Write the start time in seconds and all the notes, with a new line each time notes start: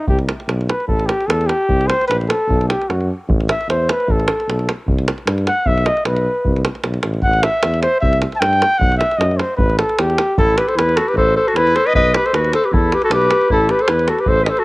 0.07 C2 G4, davul low
0.19 davul high
0.29 davul high
0.40 davul high
0.48 B1, davul high
0.61 davul high
0.70 B4, davul high
0.80 davul high
0.88 A1 A4, davul low
1.00 davul high
1.06 G4, davul high
1.21 davul high
1.27 E2 A4, davul high
1.41 davul high
1.47 G4, davul high
1.69 C2, davul low
1.81 davul high
1.87 C5, davul high
2.01 davul high
2.08 A#1 B4, davul high
2.21 davul high
2.29 A4, davul high
2.49 B1, davul low
2.61 davul high
2.68 G4, davul high
2.82 davul high
2.88 F#2 F#4, davul high
3.01 davul high
3.28 A1, davul low
3.40 davul high
3.49 E5, davul high
3.61 davul high
3.68 E2 C5, davul high
3.89 B4, davul high
4.00 davul high
4.07 A1 A4, davul low
4.20 davul high
4.28 davul high
4.40 davul high
4.48 B1, davul high
4.59 davul high
4.69 davul high
4.87 C2, davul low
4.99 davul high
5.08 davul high
5.18 davul high
5.27 G2, davul high
5.38 davul high
5.47 F#5, davul high
5.66 B1 E5, davul low
5.78 davul high
5.86 D#5, davul high
5.97 davul high
6.05 B1 B4, davul high
6.16 davul high
6.45 C2, davul low
6.56 davul high
6.65 davul high
6.75 davul high
6.84 B1, davul high
6.94 davul high
7.03 A1, davul high
7.14 davul high
7.22 A1 F#5, davul low
7.33 davul high
7.43 E5, davul high
7.63 E2, davul high
7.74 davul high
7.82 C5, davul high
8.01 C2 E5, davul low
8.13 davul high
8.22 davul high
8.32 A5, davul high
8.40 G2 G5, davul high
8.53 davul high
8.62 davul high
8.78 B1 F#5, davul low
8.92 davul high
8.98 E5, davul high
9.11 davul high
9.18 F#2 D#5, davul high
9.31 davul high
9.37 C5, davul high
9.57 A1 B4, davul low
9.70 davul high
9.78 A4, davul high
9.89 davul high
9.98 E2 G4, davul high
10.10 davul high
10.18 davul high
10.37 A1 E4 A4, davul low
10.57 G4 B4, davul high
10.67 A4 C5, davul high
10.76 E2 E4 B4, davul high
10.89 davul high
10.96 F#4 A4, davul high
11.07 G4 B4, davul high
11.15 A1 A4 C5, davul low
11.36 A4 C5
11.47 F#4 A4, davul high
11.54 E2 E4 B4, davul high
11.67 davul high
11.76 A4 C5, davul high
11.86 B4 D#5, davul high
11.94 B1 B4 D#5, davul low
12.14 G4 B4, davul high
12.26 A4 C5, davul high
12.33 D#2 F#4 B4, davul high
12.45 davul high
12.53 A4 C5, davul high
12.64 G4 B4, davul high
12.68 E2 E4 G4 B4
12.74 A4, davul low
12.92 G4 B4, davul high
13.02 F#4 A4, davul high
13.10 B1 G4 B4, davul high
13.22 davul high
13.31 davul high
13.41 davul high
13.50 A1 E4 A4, davul low
13.69 G4 B4, davul high
13.79 A4 C5, davul high
13.88 E2 E4 B4, davul high
13.99 davul high
14.08 F#4 A4, davul high
14.18 G4 B4, davul high
14.26 A1 A4 C5, davul low
14.43 B4 D#5, davul high
14.48 A4 C5
14.57 F#4 A4, davul high